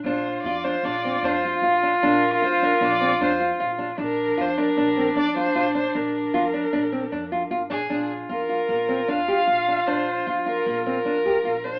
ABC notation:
X:1
M:5/4
L:1/8
Q:1/4=153
K:Bb
V:1 name="Violin"
c2 d c d2 c z3 | B2 c B d2 c z3 | B2 c B3 d c2 c | B8 z _A- |
_A z B4 f4 | c2 z B2 B4 c |]
V:2 name="Cello"
F8- F2- | F8- F2 | D8- D2- | D8- D z |
F8- F2- | F8- F2 |]
V:3 name="Nylon-string guitar"
D2 F D D C D F F D | D2 F D D C D F F D | D2 F D D C D F F D | D2 F D D C D F F D |
D2 F F B, C D G F D | D2 F F B, C D G F D |]
V:4 name="Upright bass" clef=bass
B,,,2 F,,2 B,,,2 F,,2 B,,,2 | B,,,2 F,,2 B,,,2 F,,2 B,,,2 | B,,,2 F,,2 B,,,2 F,,2 B,,,2 | B,,,2 F,,2 B,,,2 F,,2 _A,,, B,,, |
B,,,2 F,,2 B,,,2 F,,2 B,,,2 | B,,,2 F,,2 B,,,2 F,,2 B,,,2 |]